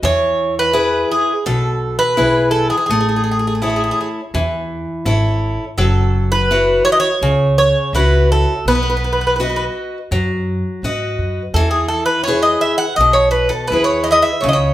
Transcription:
0.03 upright bass E2, steel-string acoustic guitar E3, bouzouki C#5
0.59 bouzouki B4
0.73 steel-string acoustic guitar E4 G#4 B4
1.12 bouzouki G#4
1.46 upright bass B1, steel-string acoustic guitar B2, bouzouki A4
1.99 bouzouki B4
2.17 upright bass B1, steel-string acoustic guitar E4 G#4 B4
2.51 bouzouki A4
2.70 bouzouki G#4
2.77 bouzouki G#4
2.86 upright bass A1, bouzouki G#4
2.90 steel-string acoustic guitar A3, bouzouki G#4
3.01 bouzouki G#4
3.09 bouzouki G#4
3.16 bouzouki G#4
3.24 bouzouki G#4
3.31 bouzouki G#4
3.39 bouzouki G#4
3.47 bouzouki G#4
3.55 bouzouki G#4
3.62 steel-string acoustic guitar E4 A4 C#5, bouzouki G#4
3.70 bouzouki G#4
3.76 bouzouki G#4
3.84 bouzouki G#4
3.91 bouzouki G#4
4.01 bouzouki G#4
4.34 upright bass E2, steel-string acoustic guitar E3
5.05 upright bass G#1, steel-string acoustic guitar E4 A4 C#5
5.78 upright bass F#1, steel-string acoustic guitar F#3, bouzouki A4
6.32 bouzouki B4
6.51 steel-string acoustic guitar E4 F#4 C#5
6.85 bouzouki C#5
6.92 bouzouki D#5
7.00 bouzouki C#5
7.21 upright bass C#2, steel-string acoustic guitar C#3
7.58 bouzouki C#5
7.93 upright bass C#2, steel-string acoustic guitar E4 F#4 C#5, bouzouki B4
8.32 bouzouki A4
8.65 upright bass B1, steel-string acoustic guitar B3, bouzouki B4
8.75 bouzouki B4
8.83 bouzouki B4
8.90 bouzouki B4
8.97 bouzouki B4
9.04 bouzouki B4
9.13 bouzouki B4
9.21 bouzouki B4
9.27 bouzouki B4
9.40 steel-string acoustic guitar F#4 B4 D#5, bouzouki B4
9.50 bouzouki B4
9.56 bouzouki B4
10.11 upright bass F#2, steel-string acoustic guitar F#3
10.83 upright bass G#2, steel-string acoustic guitar F#4 B4 D#5
11.18 upright bass F#2
11.54 upright bass E2, steel-string acoustic guitar E3, bouzouki A4
11.71 bouzouki G#4
11.88 bouzouki A4
12.06 bouzouki B4
12.24 steel-string acoustic guitar E4, bouzouki C#5
12.28 steel-string acoustic guitar G#4 B4
12.43 bouzouki D#5
12.61 bouzouki E5
12.78 bouzouki F#5
12.96 upright bass B1, bouzouki D#5
13.01 steel-string acoustic guitar B2
13.13 bouzouki C#5
13.31 bouzouki B4
13.49 bouzouki A4
13.67 upright bass D#2, bouzouki B4
13.72 steel-string acoustic guitar E4 G#4 B4
13.84 bouzouki C#5
14.04 bouzouki D#5
14.11 bouzouki D#5 E5
14.22 bouzouki E5
14.41 upright bass C#2, steel-string acoustic guitar C#3, bouzouki C#5
14.49 bouzouki D#5
14.53 bouzouki C#5

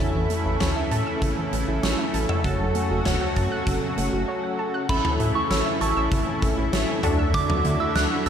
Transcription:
Already playing: analog synth pad E4
0.00 analog synth bass A1, analog synth pad C#3 E3 A3, analog polysynth C#4 E4 A4
0.15 analog synth bass A1, synth pluck E3
0.30 synth pluck A3, closed hi-hat
0.45 analog synth bass A1, synth pluck E4
0.60 analog synth bass A1, synth pluck C#5, snare, closed hi-hat, mid tom
0.76 synth pluck E5
0.91 analog synth bass A2, synth pluck A5, closed hi-hat
1.07 synth pluck E6
1.22 analog synth bass A1, synth pluck C#3, kick, closed hi-hat
1.37 synth pluck E3
1.53 analog synth bass A1, synth pluck A3, closed hi-hat
1.68 analog synth bass A1, synth pluck E4
1.83 analog synth bass A1, synth pluck C#5, snare, closed hi-hat
1.99 synth pluck E5
2.14 analog synth bass A1, synth pluck A5, closed hi-hat
2.29 synth pluck E6, mid tom
2.44 analog synth bass F#1, analog synth pad C#3 F#3 F#4, synth pluck C#3, analog polysynth C#4 F#4 A4, kick, closed hi-hat
2.60 analog synth bass F#1, synth pluck F#3
2.75 synth pluck A3, closed hi-hat
2.90 analog synth bass F#1, synth pluck F#4
3.05 analog synth bass F#1, synth pluck C#5, snare, closed hi-hat, mid tom
3.21 synth pluck F#5
3.36 analog synth bass F#2, synth pluck A5, kick, closed hi-hat
3.52 synth pluck F#6
3.67 analog synth bass F#1, synth pluck C#3, kick, closed hi-hat
3.82 synth pluck F#3
3.98 analog synth bass F#1, synth pluck A3, closed hi-hat
4.13 analog synth bass F#1, synth pluck F#4
4.28 synth pluck C#5
4.43 synth pluck F#5
4.59 synth pluck A5
4.74 synth pluck F#6
4.89 analog synth bass A1, analog synth pad C#3 E3 A3 E4, synth pluck C#3, analog polysynth C#4 E4 A4, synth bell B5, kick, crash
5.05 synth pluck E3, mid tom
5.20 analog synth bass A2, synth pluck A3, closed hi-hat
5.35 synth pluck E4, synth bell C#6
5.50 analog synth bass A1, synth pluck C#5, synth bell E6, snare, closed hi-hat
5.66 synth pluck E5
5.81 analog synth bass A1, synth pluck A5, synth bell C#6, closed hi-hat
5.96 analog synth bass A1, synth pluck E6
6.12 analog synth bass A1, synth pluck C#3, kick, closed hi-hat
6.27 synth pluck E3
6.42 analog synth bass A1, synth pluck A3, kick, closed hi-hat
6.58 analog synth bass A1, synth pluck E4
6.73 analog synth bass A1, synth pluck C#5, snare, closed hi-hat
6.88 synth pluck E5
7.03 analog synth bass D2, analog synth pad D3 F#3, analog polysynth D4 F#4 A4, synth pluck A5, closed hi-hat, mid tom
7.19 synth pluck E6
7.34 synth pluck D3, synth bell D6, kick, closed hi-hat
7.50 synth pluck F#3, mid tom
7.64 analog synth bass D3, synth pluck A3, closed hi-hat
7.80 synth pluck E4, synth bell E6
7.95 analog synth bass D2, synth pluck D5, synth bell F#6, snare, closed hi-hat
8.11 synth pluck F#5
8.26 analog synth bass D2, synth pluck A5, closed hi-hat

